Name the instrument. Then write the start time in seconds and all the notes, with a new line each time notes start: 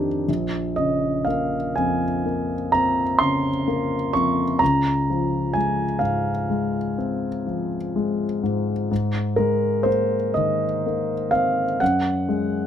grand piano
Already playing: F2 D#3 D4 G4
0.28 A#1
0.76 C#3 D#5
1.25 A#3 F5
1.76 F2 G#5
2.26 A#3
2.72 C4 A#5
3.19 C#3 C6
3.68 A#3
4.13 F2 C#6
4.59 C#2 A#5
5.10 F3
5.54 G#3 G#5
5.99 G#2 F5
6.50 G#3
6.98 C4
7.46 F3
7.96 G#3
8.43 G#2
8.91 G#2
9.36 G#3 A#4
9.83 A#3 C5
10.34 D#3 D#5
10.86 A#3
11.31 C4 F5
11.80 F#2 F#5
12.29 G#3